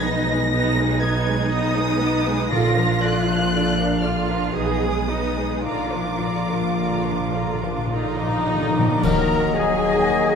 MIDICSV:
0, 0, Header, 1, 14, 480
1, 0, Start_track
1, 0, Tempo, 991736
1, 1225, Time_signature, 3, 2, 24, 8
1, 1707, Tempo, 1029160
1, 2187, Tempo, 1117318
1, 4107, Tempo, 1015228
1, 4734, End_track
2, 0, Start_track
2, 0, Title_t, "Violin section"
2, 0, Program_c, 0, 48
2, 25, Note_on_c, 0, 94, 127
2, 491, Note_on_c, 0, 92, 114
2, 498, Note_off_c, 0, 94, 0
2, 733, Note_on_c, 0, 87, 127
2, 736, Note_off_c, 0, 92, 0
2, 1217, Note_on_c, 0, 94, 120
2, 1221, Note_off_c, 0, 87, 0
2, 1457, Note_off_c, 0, 94, 0
2, 1459, Note_on_c, 0, 90, 127
2, 1932, Note_on_c, 0, 89, 99
2, 1940, Note_off_c, 0, 90, 0
2, 2177, Note_on_c, 0, 87, 103
2, 2181, Note_off_c, 0, 89, 0
2, 2658, Note_on_c, 0, 86, 99
2, 2659, Note_off_c, 0, 87, 0
2, 3631, Note_off_c, 0, 86, 0
2, 4105, Note_on_c, 0, 78, 71
2, 4142, Note_off_c, 0, 78, 0
2, 4348, Note_on_c, 0, 78, 71
2, 4386, Note_off_c, 0, 78, 0
2, 4591, Note_on_c, 0, 78, 66
2, 4629, Note_off_c, 0, 78, 0
2, 4734, End_track
3, 0, Start_track
3, 0, Title_t, "Flute section"
3, 0, Program_c, 1, 73
3, 4111, Note_on_c, 1, 75, 83
3, 4734, Note_off_c, 1, 75, 0
3, 4734, End_track
4, 0, Start_track
4, 0, Title_t, "Trumpet"
4, 0, Program_c, 2, 56
4, 4111, Note_on_c, 2, 75, 73
4, 4734, Note_off_c, 2, 75, 0
4, 4734, End_track
5, 0, Start_track
5, 0, Title_t, "Violin section"
5, 0, Program_c, 3, 48
5, 29, Note_on_c, 3, 75, 85
5, 31, Note_on_c, 3, 71, 85
5, 146, Note_off_c, 3, 71, 0
5, 146, Note_off_c, 3, 75, 0
5, 151, Note_on_c, 3, 68, 73
5, 151, Note_on_c, 3, 71, 73
5, 256, Note_off_c, 3, 71, 0
5, 262, Note_on_c, 3, 71, 72
5, 263, Note_on_c, 3, 75, 70
5, 266, Note_off_c, 3, 68, 0
5, 372, Note_off_c, 3, 71, 0
5, 372, Note_off_c, 3, 75, 0
5, 381, Note_on_c, 3, 71, 77
5, 383, Note_on_c, 3, 68, 76
5, 491, Note_off_c, 3, 71, 0
5, 497, Note_on_c, 3, 71, 68
5, 499, Note_on_c, 3, 75, 67
5, 500, Note_off_c, 3, 68, 0
5, 618, Note_off_c, 3, 71, 0
5, 619, Note_off_c, 3, 75, 0
5, 623, Note_on_c, 3, 71, 71
5, 626, Note_on_c, 3, 68, 68
5, 732, Note_off_c, 3, 71, 0
5, 738, Note_on_c, 3, 71, 73
5, 738, Note_on_c, 3, 75, 77
5, 744, Note_off_c, 3, 68, 0
5, 852, Note_off_c, 3, 71, 0
5, 852, Note_off_c, 3, 75, 0
5, 862, Note_on_c, 3, 71, 81
5, 865, Note_on_c, 3, 68, 74
5, 974, Note_off_c, 3, 71, 0
5, 980, Note_on_c, 3, 71, 82
5, 983, Note_on_c, 3, 75, 72
5, 985, Note_off_c, 3, 68, 0
5, 1089, Note_off_c, 3, 71, 0
5, 1095, Note_on_c, 3, 71, 81
5, 1096, Note_on_c, 3, 68, 77
5, 1104, Note_off_c, 3, 75, 0
5, 1220, Note_off_c, 3, 71, 0
5, 1220, Note_on_c, 3, 74, 87
5, 1221, Note_off_c, 3, 68, 0
5, 1221, Note_off_c, 3, 74, 0
5, 1221, Note_on_c, 3, 74, 81
5, 1334, Note_off_c, 3, 74, 0
5, 1336, Note_on_c, 3, 70, 71
5, 1342, Note_on_c, 3, 77, 69
5, 1461, Note_off_c, 3, 70, 0
5, 1464, Note_off_c, 3, 77, 0
5, 1465, Note_on_c, 3, 74, 80
5, 1466, Note_off_c, 3, 74, 0
5, 1466, Note_on_c, 3, 74, 81
5, 1586, Note_off_c, 3, 74, 0
5, 1592, Note_on_c, 3, 77, 69
5, 1593, Note_on_c, 3, 70, 68
5, 1709, Note_on_c, 3, 74, 62
5, 1710, Note_off_c, 3, 70, 0
5, 1710, Note_off_c, 3, 74, 0
5, 1710, Note_off_c, 3, 77, 0
5, 1710, Note_on_c, 3, 74, 73
5, 1818, Note_off_c, 3, 74, 0
5, 1833, Note_on_c, 3, 70, 73
5, 1834, Note_on_c, 3, 77, 65
5, 1945, Note_on_c, 3, 74, 63
5, 1947, Note_off_c, 3, 70, 0
5, 1948, Note_off_c, 3, 74, 0
5, 1948, Note_off_c, 3, 77, 0
5, 1948, Note_on_c, 3, 74, 71
5, 2066, Note_off_c, 3, 74, 0
5, 2067, Note_on_c, 3, 77, 63
5, 2068, Note_on_c, 3, 70, 59
5, 2188, Note_off_c, 3, 77, 0
5, 2188, Note_on_c, 3, 71, 67
5, 2189, Note_off_c, 3, 70, 0
5, 2191, Note_on_c, 3, 75, 67
5, 2295, Note_off_c, 3, 71, 0
5, 2296, Note_off_c, 3, 75, 0
5, 2309, Note_on_c, 3, 68, 65
5, 2310, Note_on_c, 3, 71, 65
5, 2419, Note_off_c, 3, 71, 0
5, 2423, Note_on_c, 3, 75, 68
5, 2424, Note_off_c, 3, 68, 0
5, 2424, Note_on_c, 3, 71, 64
5, 2540, Note_off_c, 3, 71, 0
5, 2542, Note_off_c, 3, 75, 0
5, 2543, Note_on_c, 3, 68, 65
5, 2545, Note_on_c, 3, 71, 65
5, 2662, Note_on_c, 3, 74, 62
5, 2664, Note_on_c, 3, 82, 66
5, 2665, Note_off_c, 3, 68, 0
5, 2666, Note_off_c, 3, 71, 0
5, 2778, Note_off_c, 3, 74, 0
5, 2779, Note_off_c, 3, 82, 0
5, 2792, Note_on_c, 3, 70, 66
5, 2794, Note_on_c, 3, 86, 59
5, 2905, Note_on_c, 3, 74, 68
5, 2906, Note_on_c, 3, 82, 65
5, 2912, Note_off_c, 3, 70, 0
5, 2914, Note_off_c, 3, 86, 0
5, 3027, Note_on_c, 3, 86, 57
5, 3028, Note_on_c, 3, 70, 56
5, 3030, Note_off_c, 3, 74, 0
5, 3031, Note_off_c, 3, 82, 0
5, 3151, Note_off_c, 3, 86, 0
5, 3152, Note_off_c, 3, 70, 0
5, 3153, Note_on_c, 3, 82, 60
5, 3155, Note_on_c, 3, 74, 60
5, 3266, Note_off_c, 3, 82, 0
5, 3267, Note_off_c, 3, 74, 0
5, 3270, Note_on_c, 3, 70, 56
5, 3271, Note_on_c, 3, 86, 54
5, 3387, Note_on_c, 3, 74, 55
5, 3390, Note_on_c, 3, 82, 56
5, 3393, Note_off_c, 3, 70, 0
5, 3393, Note_off_c, 3, 86, 0
5, 3508, Note_on_c, 3, 70, 50
5, 3508, Note_on_c, 3, 86, 51
5, 3511, Note_off_c, 3, 74, 0
5, 3512, Note_off_c, 3, 82, 0
5, 3630, Note_off_c, 3, 86, 0
5, 3630, Note_on_c, 3, 82, 58
5, 3631, Note_off_c, 3, 70, 0
5, 3631, Note_on_c, 3, 74, 59
5, 3633, Note_on_c, 3, 75, 76
5, 3743, Note_off_c, 3, 74, 0
5, 3743, Note_off_c, 3, 82, 0
5, 3750, Note_on_c, 3, 86, 54
5, 3751, Note_on_c, 3, 70, 54
5, 3869, Note_on_c, 3, 82, 60
5, 3872, Note_off_c, 3, 70, 0
5, 3872, Note_off_c, 3, 86, 0
5, 3872, Note_on_c, 3, 74, 63
5, 3982, Note_on_c, 3, 86, 65
5, 3986, Note_on_c, 3, 70, 69
5, 3990, Note_off_c, 3, 82, 0
5, 3991, Note_off_c, 3, 74, 0
5, 4089, Note_off_c, 3, 75, 0
5, 4101, Note_off_c, 3, 86, 0
5, 4101, Note_on_c, 3, 82, 90
5, 4103, Note_off_c, 3, 70, 0
5, 4348, Note_off_c, 3, 82, 0
5, 4349, Note_on_c, 3, 80, 96
5, 4734, Note_off_c, 3, 80, 0
5, 4734, End_track
6, 0, Start_track
6, 0, Title_t, "Clarinet"
6, 0, Program_c, 4, 71
6, 3638, Note_on_c, 4, 63, 88
6, 4110, Note_on_c, 4, 70, 85
6, 4117, Note_off_c, 4, 63, 0
6, 4353, Note_on_c, 4, 68, 77
6, 4360, Note_off_c, 4, 70, 0
6, 4734, Note_off_c, 4, 68, 0
6, 4734, End_track
7, 0, Start_track
7, 0, Title_t, "Harp"
7, 0, Program_c, 5, 46
7, 0, Note_on_c, 5, 47, 95
7, 0, Note_on_c, 5, 56, 77
7, 26, Note_on_c, 5, 63, 79
7, 145, Note_on_c, 5, 75, 69
7, 261, Note_on_c, 5, 68, 79
7, 376, Note_off_c, 5, 75, 0
7, 382, Note_on_c, 5, 75, 80
7, 496, Note_on_c, 5, 87, 89
7, 610, Note_off_c, 5, 75, 0
7, 616, Note_on_c, 5, 75, 74
7, 733, Note_off_c, 5, 63, 0
7, 739, Note_on_c, 5, 63, 78
7, 853, Note_off_c, 5, 56, 0
7, 859, Note_on_c, 5, 56, 76
7, 983, Note_on_c, 5, 59, 68
7, 1094, Note_off_c, 5, 56, 0
7, 1100, Note_on_c, 5, 56, 72
7, 1223, Note_on_c, 5, 46, 86
7, 1242, Note_off_c, 5, 56, 0
7, 1242, Note_off_c, 5, 75, 0
7, 1242, Note_off_c, 5, 87, 0
7, 1243, Note_off_c, 5, 63, 0
7, 1243, Note_off_c, 5, 68, 0
7, 1244, Note_off_c, 5, 47, 0
7, 1244, Note_off_c, 5, 59, 0
7, 1339, Note_on_c, 5, 53, 74
7, 1464, Note_on_c, 5, 65, 70
7, 1583, Note_on_c, 5, 74, 67
7, 1697, Note_off_c, 5, 65, 0
7, 1703, Note_on_c, 5, 65, 73
7, 1822, Note_on_c, 5, 77, 71
7, 1943, Note_on_c, 5, 86, 71
7, 2054, Note_off_c, 5, 77, 0
7, 2059, Note_on_c, 5, 77, 60
7, 2181, Note_on_c, 5, 47, 78
7, 2203, Note_off_c, 5, 53, 0
7, 2203, Note_off_c, 5, 77, 0
7, 2204, Note_off_c, 5, 46, 0
7, 2204, Note_off_c, 5, 65, 0
7, 2204, Note_off_c, 5, 74, 0
7, 2205, Note_off_c, 5, 86, 0
7, 2297, Note_on_c, 5, 56, 54
7, 2417, Note_on_c, 5, 63, 58
7, 2536, Note_on_c, 5, 75, 57
7, 2660, Note_on_c, 5, 46, 72
7, 2681, Note_off_c, 5, 47, 0
7, 2681, Note_off_c, 5, 56, 0
7, 2681, Note_off_c, 5, 75, 0
7, 2682, Note_off_c, 5, 63, 0
7, 2784, Note_on_c, 5, 53, 65
7, 2909, Note_on_c, 5, 65, 54
7, 3032, Note_on_c, 5, 70, 60
7, 3146, Note_off_c, 5, 65, 0
7, 3151, Note_on_c, 5, 65, 62
7, 3270, Note_on_c, 5, 77, 55
7, 3390, Note_on_c, 5, 82, 63
7, 3505, Note_off_c, 5, 77, 0
7, 3510, Note_on_c, 5, 77, 53
7, 3626, Note_off_c, 5, 70, 0
7, 3631, Note_on_c, 5, 70, 55
7, 3749, Note_off_c, 5, 65, 0
7, 3754, Note_on_c, 5, 65, 55
7, 3868, Note_off_c, 5, 53, 0
7, 3874, Note_on_c, 5, 53, 48
7, 3992, Note_on_c, 5, 58, 55
7, 4106, Note_on_c, 5, 51, 63
7, 4123, Note_off_c, 5, 77, 0
7, 4124, Note_off_c, 5, 46, 0
7, 4126, Note_off_c, 5, 53, 0
7, 4126, Note_off_c, 5, 65, 0
7, 4231, Note_on_c, 5, 54, 63
7, 4353, Note_on_c, 5, 63, 59
7, 4469, Note_off_c, 5, 70, 0
7, 4475, Note_on_c, 5, 70, 57
7, 4593, Note_on_c, 5, 66, 61
7, 4706, Note_on_c, 5, 75, 67
7, 4734, Note_off_c, 5, 51, 0
7, 4734, Note_off_c, 5, 54, 0
7, 4734, Note_off_c, 5, 58, 0
7, 4734, Note_off_c, 5, 63, 0
7, 4734, Note_off_c, 5, 66, 0
7, 4734, Note_off_c, 5, 70, 0
7, 4734, Note_off_c, 5, 75, 0
7, 4734, Note_off_c, 5, 82, 0
7, 4734, End_track
8, 0, Start_track
8, 0, Title_t, "Cello section"
8, 0, Program_c, 6, 48
8, 0, Note_on_c, 6, 63, 80
8, 253, Note_off_c, 6, 63, 0
8, 262, Note_on_c, 6, 63, 94
8, 1205, Note_off_c, 6, 63, 0
8, 1225, Note_on_c, 6, 65, 84
8, 1697, Note_off_c, 6, 65, 0
8, 1708, Note_on_c, 6, 62, 78
8, 1944, Note_off_c, 6, 62, 0
8, 1944, Note_on_c, 6, 65, 87
8, 2186, Note_on_c, 6, 68, 87
8, 2188, Note_off_c, 6, 65, 0
8, 2418, Note_on_c, 6, 63, 78
8, 2420, Note_off_c, 6, 68, 0
8, 2662, Note_on_c, 6, 65, 70
8, 2663, Note_off_c, 6, 63, 0
8, 3855, Note_off_c, 6, 65, 0
8, 4108, Note_on_c, 6, 51, 78
8, 4535, Note_off_c, 6, 51, 0
8, 4592, Note_on_c, 6, 51, 75
8, 4734, Note_off_c, 6, 51, 0
8, 4734, End_track
9, 0, Start_track
9, 0, Title_t, "Viola section"
9, 0, Program_c, 7, 48
9, 19, Note_on_c, 7, 59, 63
9, 20, Note_on_c, 7, 63, 67
9, 130, Note_off_c, 7, 59, 0
9, 136, Note_on_c, 7, 59, 62
9, 137, Note_on_c, 7, 56, 71
9, 142, Note_off_c, 7, 63, 0
9, 251, Note_off_c, 7, 59, 0
9, 256, Note_on_c, 7, 63, 88
9, 257, Note_on_c, 7, 59, 83
9, 259, Note_off_c, 7, 56, 0
9, 367, Note_off_c, 7, 59, 0
9, 369, Note_off_c, 7, 63, 0
9, 372, Note_on_c, 7, 56, 72
9, 372, Note_on_c, 7, 59, 74
9, 488, Note_off_c, 7, 59, 0
9, 493, Note_on_c, 7, 59, 74
9, 493, Note_on_c, 7, 63, 76
9, 495, Note_off_c, 7, 56, 0
9, 609, Note_off_c, 7, 59, 0
9, 614, Note_on_c, 7, 56, 70
9, 615, Note_on_c, 7, 59, 72
9, 616, Note_off_c, 7, 63, 0
9, 731, Note_off_c, 7, 59, 0
9, 736, Note_on_c, 7, 63, 82
9, 737, Note_on_c, 7, 59, 77
9, 738, Note_off_c, 7, 56, 0
9, 851, Note_off_c, 7, 63, 0
9, 852, Note_off_c, 7, 59, 0
9, 860, Note_on_c, 7, 56, 75
9, 860, Note_on_c, 7, 59, 75
9, 978, Note_off_c, 7, 59, 0
9, 982, Note_off_c, 7, 56, 0
9, 983, Note_on_c, 7, 63, 71
9, 984, Note_on_c, 7, 59, 86
9, 1096, Note_off_c, 7, 59, 0
9, 1101, Note_on_c, 7, 56, 81
9, 1102, Note_on_c, 7, 59, 78
9, 1104, Note_off_c, 7, 63, 0
9, 1223, Note_off_c, 7, 56, 0
9, 1224, Note_off_c, 7, 59, 0
9, 1228, Note_on_c, 7, 50, 85
9, 1228, Note_on_c, 7, 65, 76
9, 1338, Note_off_c, 7, 50, 0
9, 1338, Note_off_c, 7, 65, 0
9, 1350, Note_on_c, 7, 53, 74
9, 1350, Note_on_c, 7, 62, 72
9, 1468, Note_off_c, 7, 53, 0
9, 1468, Note_off_c, 7, 62, 0
9, 1470, Note_on_c, 7, 50, 70
9, 1470, Note_on_c, 7, 65, 67
9, 1588, Note_off_c, 7, 50, 0
9, 1588, Note_off_c, 7, 65, 0
9, 1590, Note_on_c, 7, 53, 70
9, 1590, Note_on_c, 7, 62, 75
9, 1708, Note_off_c, 7, 53, 0
9, 1709, Note_off_c, 7, 62, 0
9, 1709, Note_on_c, 7, 65, 76
9, 1711, Note_on_c, 7, 50, 79
9, 1817, Note_off_c, 7, 65, 0
9, 1818, Note_off_c, 7, 50, 0
9, 1826, Note_on_c, 7, 53, 67
9, 1827, Note_on_c, 7, 62, 69
9, 1943, Note_on_c, 7, 50, 71
9, 1944, Note_off_c, 7, 53, 0
9, 1944, Note_off_c, 7, 62, 0
9, 1944, Note_on_c, 7, 65, 76
9, 2064, Note_off_c, 7, 50, 0
9, 2064, Note_off_c, 7, 65, 0
9, 2066, Note_on_c, 7, 53, 64
9, 2066, Note_on_c, 7, 62, 67
9, 2186, Note_on_c, 7, 63, 67
9, 2187, Note_on_c, 7, 59, 67
9, 2188, Note_off_c, 7, 53, 0
9, 2188, Note_off_c, 7, 62, 0
9, 2294, Note_off_c, 7, 59, 0
9, 2294, Note_off_c, 7, 63, 0
9, 2302, Note_on_c, 7, 56, 65
9, 2304, Note_on_c, 7, 59, 61
9, 2414, Note_off_c, 7, 59, 0
9, 2419, Note_on_c, 7, 59, 68
9, 2420, Note_on_c, 7, 63, 65
9, 2421, Note_off_c, 7, 56, 0
9, 2532, Note_off_c, 7, 59, 0
9, 2537, Note_on_c, 7, 59, 67
9, 2541, Note_off_c, 7, 63, 0
9, 2541, Note_on_c, 7, 56, 61
9, 2662, Note_off_c, 7, 59, 0
9, 2662, Note_on_c, 7, 50, 66
9, 2663, Note_on_c, 7, 65, 62
9, 2664, Note_off_c, 7, 56, 0
9, 2778, Note_off_c, 7, 50, 0
9, 2778, Note_off_c, 7, 65, 0
9, 2786, Note_on_c, 7, 62, 55
9, 2789, Note_on_c, 7, 53, 54
9, 2910, Note_off_c, 7, 62, 0
9, 2910, Note_on_c, 7, 50, 52
9, 2911, Note_off_c, 7, 53, 0
9, 2911, Note_on_c, 7, 65, 56
9, 3029, Note_on_c, 7, 53, 60
9, 3030, Note_on_c, 7, 62, 59
9, 3032, Note_off_c, 7, 50, 0
9, 3033, Note_off_c, 7, 65, 0
9, 3152, Note_off_c, 7, 53, 0
9, 3152, Note_on_c, 7, 50, 64
9, 3153, Note_off_c, 7, 62, 0
9, 3153, Note_on_c, 7, 65, 65
9, 3266, Note_off_c, 7, 50, 0
9, 3266, Note_off_c, 7, 65, 0
9, 3271, Note_on_c, 7, 53, 59
9, 3271, Note_on_c, 7, 62, 58
9, 3392, Note_on_c, 7, 50, 66
9, 3392, Note_on_c, 7, 65, 63
9, 3393, Note_off_c, 7, 53, 0
9, 3393, Note_off_c, 7, 62, 0
9, 3513, Note_off_c, 7, 50, 0
9, 3513, Note_off_c, 7, 65, 0
9, 3516, Note_on_c, 7, 53, 55
9, 3517, Note_on_c, 7, 62, 61
9, 3633, Note_on_c, 7, 50, 58
9, 3634, Note_off_c, 7, 53, 0
9, 3635, Note_off_c, 7, 62, 0
9, 3635, Note_on_c, 7, 63, 99
9, 3636, Note_on_c, 7, 65, 63
9, 3744, Note_off_c, 7, 50, 0
9, 3746, Note_off_c, 7, 65, 0
9, 3753, Note_on_c, 7, 62, 54
9, 3755, Note_on_c, 7, 53, 57
9, 3873, Note_off_c, 7, 62, 0
9, 3874, Note_off_c, 7, 53, 0
9, 3874, Note_on_c, 7, 50, 59
9, 3876, Note_on_c, 7, 65, 57
9, 3992, Note_off_c, 7, 50, 0
9, 3993, Note_off_c, 7, 65, 0
9, 3996, Note_on_c, 7, 53, 56
9, 3997, Note_on_c, 7, 62, 66
9, 4089, Note_off_c, 7, 63, 0
9, 4108, Note_off_c, 7, 53, 0
9, 4109, Note_off_c, 7, 62, 0
9, 4109, Note_on_c, 7, 70, 85
9, 4352, Note_off_c, 7, 70, 0
9, 4352, Note_on_c, 7, 68, 96
9, 4734, Note_off_c, 7, 68, 0
9, 4734, End_track
10, 0, Start_track
10, 0, Title_t, "French horn section"
10, 0, Program_c, 8, 60
10, 4103, Note_on_c, 8, 54, 72
10, 4104, Note_on_c, 8, 58, 66
10, 4734, Note_off_c, 8, 54, 0
10, 4734, Note_off_c, 8, 58, 0
10, 4734, End_track
11, 0, Start_track
11, 0, Title_t, "Bassoon"
11, 0, Program_c, 10, 70
11, 4111, Note_on_c, 10, 54, 73
11, 4734, Note_off_c, 10, 54, 0
11, 4734, End_track
12, 0, Start_track
12, 0, Title_t, "Timpani"
12, 0, Program_c, 11, 47
12, 1221, Note_on_c, 11, 46, 101
12, 1922, Note_off_c, 11, 46, 0
12, 2662, Note_on_c, 11, 46, 40
12, 2697, Note_off_c, 11, 46, 0
12, 2704, Note_on_c, 11, 46, 42
12, 2733, Note_off_c, 11, 46, 0
12, 2738, Note_on_c, 11, 46, 38
12, 2769, Note_off_c, 11, 46, 0
12, 2774, Note_on_c, 11, 46, 44
12, 2806, Note_off_c, 11, 46, 0
12, 2811, Note_on_c, 11, 46, 45
12, 2846, Note_off_c, 11, 46, 0
12, 2852, Note_on_c, 11, 46, 42
12, 2885, Note_off_c, 11, 46, 0
12, 2892, Note_on_c, 11, 46, 48
12, 2921, Note_off_c, 11, 46, 0
12, 2926, Note_on_c, 11, 46, 47
12, 2955, Note_off_c, 11, 46, 0
12, 2960, Note_on_c, 11, 46, 50
12, 2991, Note_off_c, 11, 46, 0
12, 2996, Note_on_c, 11, 46, 51
12, 3030, Note_off_c, 11, 46, 0
12, 3036, Note_on_c, 11, 46, 51
12, 3065, Note_off_c, 11, 46, 0
12, 3070, Note_on_c, 11, 46, 53
12, 3104, Note_off_c, 11, 46, 0
12, 3110, Note_on_c, 11, 46, 51
12, 3142, Note_off_c, 11, 46, 0
12, 3148, Note_on_c, 11, 46, 57
12, 3176, Note_off_c, 11, 46, 0
12, 3181, Note_on_c, 11, 46, 54
12, 3208, Note_off_c, 11, 46, 0
12, 3213, Note_on_c, 11, 46, 57
12, 3246, Note_off_c, 11, 46, 0
12, 3251, Note_on_c, 11, 46, 57
12, 3283, Note_off_c, 11, 46, 0
12, 3288, Note_on_c, 11, 46, 67
12, 3319, Note_off_c, 11, 46, 0
12, 3324, Note_on_c, 11, 46, 59
12, 3353, Note_off_c, 11, 46, 0
12, 3358, Note_on_c, 11, 46, 68
12, 3392, Note_off_c, 11, 46, 0
12, 3398, Note_on_c, 11, 46, 62
12, 3427, Note_off_c, 11, 46, 0
12, 3433, Note_on_c, 11, 46, 65
12, 3465, Note_off_c, 11, 46, 0
12, 3472, Note_on_c, 11, 46, 71
12, 3501, Note_off_c, 11, 46, 0
12, 3506, Note_on_c, 11, 46, 66
12, 3532, Note_off_c, 11, 46, 0
12, 3537, Note_on_c, 11, 46, 73
12, 3568, Note_off_c, 11, 46, 0
12, 3573, Note_on_c, 11, 46, 77
12, 3606, Note_off_c, 11, 46, 0
12, 3611, Note_on_c, 11, 46, 81
12, 3644, Note_off_c, 11, 46, 0
12, 3648, Note_on_c, 11, 46, 73
12, 3680, Note_off_c, 11, 46, 0
12, 3686, Note_on_c, 11, 46, 82
12, 3717, Note_off_c, 11, 46, 0
12, 3723, Note_on_c, 11, 46, 77
12, 3754, Note_off_c, 11, 46, 0
12, 3760, Note_on_c, 11, 46, 89
12, 3785, Note_off_c, 11, 46, 0
12, 3790, Note_on_c, 11, 46, 90
12, 3823, Note_off_c, 11, 46, 0
12, 3828, Note_on_c, 11, 46, 94
12, 3860, Note_off_c, 11, 46, 0
12, 3867, Note_on_c, 11, 46, 95
12, 3896, Note_off_c, 11, 46, 0
12, 3902, Note_on_c, 11, 46, 91
12, 3928, Note_off_c, 11, 46, 0
12, 3933, Note_on_c, 11, 46, 97
12, 3966, Note_off_c, 11, 46, 0
12, 3973, Note_on_c, 11, 46, 104
12, 4001, Note_off_c, 11, 46, 0
12, 4006, Note_on_c, 11, 46, 123
12, 4037, Note_off_c, 11, 46, 0
12, 4043, Note_on_c, 11, 46, 113
12, 4071, Note_off_c, 11, 46, 0
12, 4076, Note_on_c, 11, 46, 111
12, 4106, Note_off_c, 11, 46, 0
12, 4734, End_track
13, 0, Start_track
13, 0, Title_t, "Double bass section"
13, 0, Program_c, 12, 48
13, 0, Note_on_c, 12, 35, 99
13, 1206, Note_off_c, 12, 35, 0
13, 1224, Note_on_c, 12, 34, 94
13, 2168, Note_off_c, 12, 34, 0
13, 2185, Note_on_c, 12, 35, 80
13, 2653, Note_off_c, 12, 35, 0
13, 2661, Note_on_c, 12, 34, 85
13, 4014, Note_off_c, 12, 34, 0
13, 4107, Note_on_c, 12, 39, 80
13, 4535, Note_off_c, 12, 39, 0
13, 4595, Note_on_c, 12, 39, 76
13, 4734, Note_off_c, 12, 39, 0
13, 4734, End_track
14, 0, Start_track
14, 0, Title_t, "Drums"
14, 4111, Note_on_c, 9, 35, 90
14, 4111, Note_on_c, 9, 49, 78
14, 4159, Note_off_c, 9, 35, 0
14, 4159, Note_off_c, 9, 49, 0
14, 4734, End_track
0, 0, End_of_file